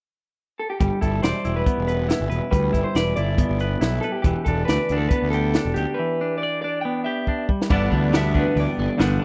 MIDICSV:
0, 0, Header, 1, 6, 480
1, 0, Start_track
1, 0, Tempo, 431034
1, 900, Time_signature, 4, 2, 24, 8
1, 10295, End_track
2, 0, Start_track
2, 0, Title_t, "Clean electric guitar"
2, 0, Program_c, 0, 27
2, 662, Note_on_c, 0, 69, 65
2, 772, Note_off_c, 0, 69, 0
2, 777, Note_on_c, 0, 67, 61
2, 878, Note_off_c, 0, 67, 0
2, 891, Note_on_c, 0, 67, 65
2, 1129, Note_off_c, 0, 67, 0
2, 1133, Note_on_c, 0, 69, 65
2, 1362, Note_off_c, 0, 69, 0
2, 1367, Note_on_c, 0, 72, 66
2, 1706, Note_off_c, 0, 72, 0
2, 1740, Note_on_c, 0, 71, 70
2, 2784, Note_off_c, 0, 71, 0
2, 2798, Note_on_c, 0, 71, 69
2, 3158, Note_off_c, 0, 71, 0
2, 3162, Note_on_c, 0, 72, 69
2, 3290, Note_off_c, 0, 72, 0
2, 3290, Note_on_c, 0, 71, 73
2, 3514, Note_off_c, 0, 71, 0
2, 3518, Note_on_c, 0, 74, 73
2, 4461, Note_off_c, 0, 74, 0
2, 4465, Note_on_c, 0, 69, 73
2, 4587, Note_off_c, 0, 69, 0
2, 4587, Note_on_c, 0, 67, 67
2, 4688, Note_off_c, 0, 67, 0
2, 4701, Note_on_c, 0, 67, 77
2, 4947, Note_off_c, 0, 67, 0
2, 4952, Note_on_c, 0, 69, 72
2, 5175, Note_off_c, 0, 69, 0
2, 5180, Note_on_c, 0, 71, 77
2, 5529, Note_off_c, 0, 71, 0
2, 5534, Note_on_c, 0, 69, 75
2, 5662, Note_off_c, 0, 69, 0
2, 5667, Note_on_c, 0, 71, 77
2, 5902, Note_off_c, 0, 71, 0
2, 5906, Note_on_c, 0, 69, 78
2, 6366, Note_off_c, 0, 69, 0
2, 6392, Note_on_c, 0, 67, 72
2, 6617, Note_on_c, 0, 71, 78
2, 6652, Note_off_c, 0, 67, 0
2, 7098, Note_off_c, 0, 71, 0
2, 7102, Note_on_c, 0, 74, 82
2, 7342, Note_off_c, 0, 74, 0
2, 7367, Note_on_c, 0, 74, 82
2, 7583, Note_off_c, 0, 74, 0
2, 7588, Note_on_c, 0, 79, 94
2, 7839, Note_off_c, 0, 79, 0
2, 7843, Note_on_c, 0, 76, 81
2, 8297, Note_off_c, 0, 76, 0
2, 8584, Note_on_c, 0, 74, 81
2, 9077, Note_off_c, 0, 74, 0
2, 9092, Note_on_c, 0, 76, 78
2, 9323, Note_off_c, 0, 76, 0
2, 9347, Note_on_c, 0, 71, 72
2, 9571, Note_off_c, 0, 71, 0
2, 9577, Note_on_c, 0, 74, 81
2, 10008, Note_off_c, 0, 74, 0
2, 10295, End_track
3, 0, Start_track
3, 0, Title_t, "Overdriven electric guitar"
3, 0, Program_c, 1, 29
3, 899, Note_on_c, 1, 55, 63
3, 1128, Note_on_c, 1, 64, 53
3, 1379, Note_on_c, 1, 74, 60
3, 1608, Note_off_c, 1, 64, 0
3, 1613, Note_on_c, 1, 64, 55
3, 1850, Note_on_c, 1, 59, 61
3, 2091, Note_on_c, 1, 71, 57
3, 2319, Note_off_c, 1, 64, 0
3, 2323, Note_on_c, 1, 64, 60
3, 2553, Note_off_c, 1, 71, 0
3, 2557, Note_on_c, 1, 71, 54
3, 2793, Note_off_c, 1, 55, 0
3, 2798, Note_on_c, 1, 55, 66
3, 3034, Note_off_c, 1, 64, 0
3, 3038, Note_on_c, 1, 64, 55
3, 3072, Note_off_c, 1, 74, 0
3, 3297, Note_on_c, 1, 74, 64
3, 3530, Note_off_c, 1, 64, 0
3, 3534, Note_on_c, 1, 64, 57
3, 3764, Note_off_c, 1, 59, 0
3, 3768, Note_on_c, 1, 59, 62
3, 4012, Note_off_c, 1, 71, 0
3, 4017, Note_on_c, 1, 71, 59
3, 4238, Note_off_c, 1, 64, 0
3, 4243, Note_on_c, 1, 64, 55
3, 4495, Note_off_c, 1, 71, 0
3, 4500, Note_on_c, 1, 71, 55
3, 4739, Note_off_c, 1, 55, 0
3, 4743, Note_on_c, 1, 52, 67
3, 4777, Note_off_c, 1, 74, 0
3, 4986, Note_off_c, 1, 64, 0
3, 4990, Note_on_c, 1, 62, 54
3, 5228, Note_on_c, 1, 74, 62
3, 5478, Note_off_c, 1, 62, 0
3, 5482, Note_on_c, 1, 62, 57
3, 5708, Note_off_c, 1, 59, 0
3, 5713, Note_on_c, 1, 59, 64
3, 5944, Note_off_c, 1, 71, 0
3, 5948, Note_on_c, 1, 67, 58
3, 6184, Note_off_c, 1, 62, 0
3, 6188, Note_on_c, 1, 62, 60
3, 6222, Note_off_c, 1, 52, 0
3, 6420, Note_off_c, 1, 67, 0
3, 6433, Note_on_c, 1, 67, 55
3, 6672, Note_on_c, 1, 52, 68
3, 6706, Note_off_c, 1, 74, 0
3, 6903, Note_off_c, 1, 62, 0
3, 6905, Note_off_c, 1, 59, 0
3, 6917, Note_on_c, 1, 62, 58
3, 7163, Note_on_c, 1, 74, 65
3, 7383, Note_off_c, 1, 62, 0
3, 7396, Note_on_c, 1, 62, 55
3, 7626, Note_off_c, 1, 67, 0
3, 7629, Note_on_c, 1, 59, 64
3, 7861, Note_on_c, 1, 67, 61
3, 7866, Note_off_c, 1, 52, 0
3, 8097, Note_off_c, 1, 62, 0
3, 8110, Note_on_c, 1, 62, 61
3, 8340, Note_off_c, 1, 67, 0
3, 8343, Note_on_c, 1, 55, 55
3, 8345, Note_off_c, 1, 59, 0
3, 8345, Note_off_c, 1, 62, 0
3, 8352, Note_off_c, 1, 74, 0
3, 8567, Note_off_c, 1, 55, 0
3, 8569, Note_on_c, 1, 43, 80
3, 8576, Note_on_c, 1, 50, 87
3, 8580, Note_on_c, 1, 55, 80
3, 8596, Note_on_c, 1, 59, 88
3, 8601, Note_on_c, 1, 62, 97
3, 8801, Note_off_c, 1, 62, 0
3, 8806, Note_on_c, 1, 62, 64
3, 8823, Note_off_c, 1, 59, 0
3, 8828, Note_on_c, 1, 59, 61
3, 8839, Note_off_c, 1, 55, 0
3, 8843, Note_on_c, 1, 55, 49
3, 9018, Note_off_c, 1, 50, 0
3, 9032, Note_on_c, 1, 50, 66
3, 9044, Note_off_c, 1, 55, 0
3, 9048, Note_on_c, 1, 55, 68
3, 9055, Note_off_c, 1, 59, 0
3, 9059, Note_on_c, 1, 59, 76
3, 9067, Note_off_c, 1, 62, 0
3, 9071, Note_on_c, 1, 62, 70
3, 9289, Note_off_c, 1, 62, 0
3, 9293, Note_on_c, 1, 62, 60
3, 9307, Note_off_c, 1, 59, 0
3, 9312, Note_on_c, 1, 59, 54
3, 9318, Note_off_c, 1, 55, 0
3, 9323, Note_on_c, 1, 55, 49
3, 9527, Note_off_c, 1, 50, 0
3, 9990, Note_off_c, 1, 43, 0
3, 9995, Note_on_c, 1, 43, 80
3, 10003, Note_on_c, 1, 50, 84
3, 10007, Note_off_c, 1, 55, 0
3, 10011, Note_on_c, 1, 55, 86
3, 10015, Note_off_c, 1, 59, 0
3, 10019, Note_on_c, 1, 59, 85
3, 10025, Note_off_c, 1, 62, 0
3, 10029, Note_on_c, 1, 62, 85
3, 10231, Note_off_c, 1, 62, 0
3, 10235, Note_on_c, 1, 62, 58
3, 10250, Note_off_c, 1, 59, 0
3, 10255, Note_on_c, 1, 59, 53
3, 10260, Note_off_c, 1, 55, 0
3, 10295, Note_off_c, 1, 43, 0
3, 10295, Note_off_c, 1, 50, 0
3, 10295, Note_off_c, 1, 59, 0
3, 10295, Note_off_c, 1, 62, 0
3, 10295, End_track
4, 0, Start_track
4, 0, Title_t, "Overdriven electric guitar"
4, 0, Program_c, 2, 29
4, 8589, Note_on_c, 2, 52, 64
4, 8828, Note_on_c, 2, 59, 62
4, 9055, Note_on_c, 2, 67, 66
4, 9310, Note_on_c, 2, 62, 64
4, 9548, Note_off_c, 2, 67, 0
4, 9552, Note_on_c, 2, 67, 69
4, 9785, Note_off_c, 2, 59, 0
4, 9790, Note_on_c, 2, 59, 66
4, 10020, Note_off_c, 2, 52, 0
4, 10024, Note_on_c, 2, 52, 65
4, 10272, Note_off_c, 2, 59, 0
4, 10295, Note_off_c, 2, 52, 0
4, 10295, Note_off_c, 2, 62, 0
4, 10295, Note_off_c, 2, 67, 0
4, 10295, End_track
5, 0, Start_track
5, 0, Title_t, "Picked electric bass"
5, 0, Program_c, 3, 34
5, 901, Note_on_c, 3, 31, 82
5, 995, Note_off_c, 3, 31, 0
5, 1140, Note_on_c, 3, 31, 79
5, 1328, Note_off_c, 3, 31, 0
5, 1370, Note_on_c, 3, 28, 69
5, 1468, Note_off_c, 3, 28, 0
5, 1617, Note_on_c, 3, 28, 73
5, 1805, Note_off_c, 3, 28, 0
5, 1983, Note_on_c, 3, 28, 69
5, 2357, Note_off_c, 3, 28, 0
5, 2457, Note_on_c, 3, 31, 69
5, 2551, Note_off_c, 3, 31, 0
5, 2565, Note_on_c, 3, 28, 75
5, 2663, Note_off_c, 3, 28, 0
5, 2809, Note_on_c, 3, 38, 79
5, 3000, Note_off_c, 3, 38, 0
5, 3048, Note_on_c, 3, 31, 68
5, 3145, Note_off_c, 3, 31, 0
5, 3289, Note_on_c, 3, 28, 80
5, 3480, Note_off_c, 3, 28, 0
5, 3533, Note_on_c, 3, 31, 70
5, 3816, Note_off_c, 3, 31, 0
5, 3890, Note_on_c, 3, 31, 70
5, 4175, Note_off_c, 3, 31, 0
5, 4246, Note_on_c, 3, 35, 76
5, 4438, Note_off_c, 3, 35, 0
5, 4724, Note_on_c, 3, 28, 86
5, 4822, Note_off_c, 3, 28, 0
5, 4969, Note_on_c, 3, 28, 85
5, 5160, Note_off_c, 3, 28, 0
5, 5223, Note_on_c, 3, 38, 75
5, 5314, Note_off_c, 3, 38, 0
5, 5456, Note_on_c, 3, 38, 72
5, 5644, Note_off_c, 3, 38, 0
5, 5817, Note_on_c, 3, 38, 74
5, 6194, Note_off_c, 3, 38, 0
5, 6295, Note_on_c, 3, 28, 75
5, 6390, Note_off_c, 3, 28, 0
5, 6417, Note_on_c, 3, 38, 75
5, 6510, Note_off_c, 3, 38, 0
5, 8583, Note_on_c, 3, 31, 83
5, 8770, Note_off_c, 3, 31, 0
5, 8822, Note_on_c, 3, 38, 79
5, 9388, Note_off_c, 3, 38, 0
5, 9535, Note_on_c, 3, 38, 93
5, 9632, Note_off_c, 3, 38, 0
5, 9783, Note_on_c, 3, 31, 76
5, 9877, Note_off_c, 3, 31, 0
5, 10021, Note_on_c, 3, 31, 80
5, 10211, Note_off_c, 3, 31, 0
5, 10295, End_track
6, 0, Start_track
6, 0, Title_t, "Drums"
6, 897, Note_on_c, 9, 36, 83
6, 897, Note_on_c, 9, 42, 67
6, 1008, Note_off_c, 9, 36, 0
6, 1009, Note_off_c, 9, 42, 0
6, 1138, Note_on_c, 9, 36, 57
6, 1140, Note_on_c, 9, 42, 44
6, 1249, Note_off_c, 9, 36, 0
6, 1251, Note_off_c, 9, 42, 0
6, 1373, Note_on_c, 9, 42, 74
6, 1384, Note_on_c, 9, 38, 92
6, 1484, Note_off_c, 9, 42, 0
6, 1495, Note_off_c, 9, 38, 0
6, 1612, Note_on_c, 9, 42, 52
6, 1723, Note_off_c, 9, 42, 0
6, 1853, Note_on_c, 9, 36, 92
6, 1855, Note_on_c, 9, 42, 73
6, 1965, Note_off_c, 9, 36, 0
6, 1966, Note_off_c, 9, 42, 0
6, 2097, Note_on_c, 9, 42, 53
6, 2209, Note_off_c, 9, 42, 0
6, 2336, Note_on_c, 9, 42, 73
6, 2347, Note_on_c, 9, 38, 87
6, 2447, Note_off_c, 9, 42, 0
6, 2458, Note_off_c, 9, 38, 0
6, 2578, Note_on_c, 9, 42, 51
6, 2689, Note_off_c, 9, 42, 0
6, 2813, Note_on_c, 9, 36, 89
6, 2820, Note_on_c, 9, 42, 68
6, 2925, Note_off_c, 9, 36, 0
6, 2931, Note_off_c, 9, 42, 0
6, 3051, Note_on_c, 9, 36, 60
6, 3055, Note_on_c, 9, 42, 47
6, 3162, Note_off_c, 9, 36, 0
6, 3166, Note_off_c, 9, 42, 0
6, 3287, Note_on_c, 9, 42, 69
6, 3298, Note_on_c, 9, 38, 94
6, 3398, Note_off_c, 9, 42, 0
6, 3409, Note_off_c, 9, 38, 0
6, 3525, Note_on_c, 9, 42, 51
6, 3637, Note_off_c, 9, 42, 0
6, 3766, Note_on_c, 9, 36, 94
6, 3767, Note_on_c, 9, 42, 69
6, 3877, Note_off_c, 9, 36, 0
6, 3878, Note_off_c, 9, 42, 0
6, 4005, Note_on_c, 9, 42, 48
6, 4116, Note_off_c, 9, 42, 0
6, 4247, Note_on_c, 9, 42, 68
6, 4258, Note_on_c, 9, 38, 91
6, 4358, Note_off_c, 9, 42, 0
6, 4369, Note_off_c, 9, 38, 0
6, 4485, Note_on_c, 9, 42, 50
6, 4597, Note_off_c, 9, 42, 0
6, 4725, Note_on_c, 9, 36, 93
6, 4726, Note_on_c, 9, 42, 66
6, 4836, Note_off_c, 9, 36, 0
6, 4838, Note_off_c, 9, 42, 0
6, 4966, Note_on_c, 9, 36, 57
6, 4967, Note_on_c, 9, 42, 46
6, 5077, Note_off_c, 9, 36, 0
6, 5078, Note_off_c, 9, 42, 0
6, 5212, Note_on_c, 9, 42, 70
6, 5223, Note_on_c, 9, 38, 87
6, 5323, Note_off_c, 9, 42, 0
6, 5334, Note_off_c, 9, 38, 0
6, 5447, Note_on_c, 9, 42, 53
6, 5558, Note_off_c, 9, 42, 0
6, 5688, Note_on_c, 9, 36, 92
6, 5689, Note_on_c, 9, 42, 77
6, 5799, Note_off_c, 9, 36, 0
6, 5800, Note_off_c, 9, 42, 0
6, 5934, Note_on_c, 9, 42, 54
6, 6045, Note_off_c, 9, 42, 0
6, 6168, Note_on_c, 9, 42, 73
6, 6179, Note_on_c, 9, 38, 96
6, 6279, Note_off_c, 9, 42, 0
6, 6290, Note_off_c, 9, 38, 0
6, 6414, Note_on_c, 9, 42, 54
6, 6526, Note_off_c, 9, 42, 0
6, 8098, Note_on_c, 9, 36, 46
6, 8209, Note_off_c, 9, 36, 0
6, 8339, Note_on_c, 9, 36, 66
6, 8450, Note_off_c, 9, 36, 0
6, 8481, Note_on_c, 9, 38, 69
6, 8577, Note_on_c, 9, 49, 78
6, 8579, Note_on_c, 9, 36, 99
6, 8592, Note_off_c, 9, 38, 0
6, 8689, Note_off_c, 9, 49, 0
6, 8690, Note_off_c, 9, 36, 0
6, 8817, Note_on_c, 9, 36, 66
6, 8929, Note_off_c, 9, 36, 0
6, 9053, Note_on_c, 9, 46, 48
6, 9064, Note_on_c, 9, 38, 100
6, 9164, Note_off_c, 9, 46, 0
6, 9175, Note_off_c, 9, 38, 0
6, 9296, Note_on_c, 9, 36, 77
6, 9408, Note_off_c, 9, 36, 0
6, 9543, Note_on_c, 9, 46, 47
6, 9654, Note_off_c, 9, 46, 0
6, 10015, Note_on_c, 9, 46, 49
6, 10026, Note_on_c, 9, 38, 98
6, 10127, Note_off_c, 9, 46, 0
6, 10138, Note_off_c, 9, 38, 0
6, 10295, End_track
0, 0, End_of_file